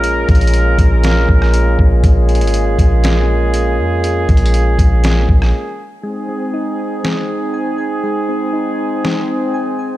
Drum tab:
HH |x-----------x--x--x--x--x-----------x-----------x-----------------------x-----------------------|x-----------x--x--x--x--x-----------x-----------x-----------------------x-----------------------|x-----------x---x---x---x-----------x-----------x-----------------------------------------------|------------------------------------------------------------------------------------------------|
SD |------------------------------------------------o-----------------r-----------------------------|------------------------------------------------o-----------------------------------------------|------------------------------------------------o-----------------r-----------------------------|------------------------------------------------o-----------------------------------------------|
BD |------------o-----------------------o-----------------------o-----------------------o-----------|o-----------------------------------o-----------------------------------------------------------|------------o-----------------------o-----------------------o-----------------------------------|------------------------------------------------------------------------------------------------|

HH |------------------------------------------------------------------------------------------------|
SD |------------------------------------------------o-----------------------------------------------|
BD |------------------------------------------------------------------------------------------------|